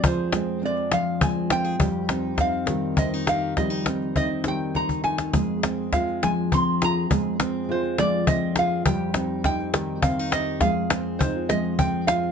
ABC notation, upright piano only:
X:1
M:6/8
L:1/16
Q:3/8=68
K:Fm
V:1 name="Upright piano"
[F,A,C]2 A,2 C2 F,2 A,2 C2 | G,2 C2 E2 G,2 C2 E2 | G,2 C2 E2 G,2 C2 E2 | A,2 C2 F2 A,2 C2 F2 |
A,2 C2 F2 A,2 C2 F2 | G,2 C2 E2 G,2 C2 E2 | A,2 C2 E F A,2 C2 F2 |]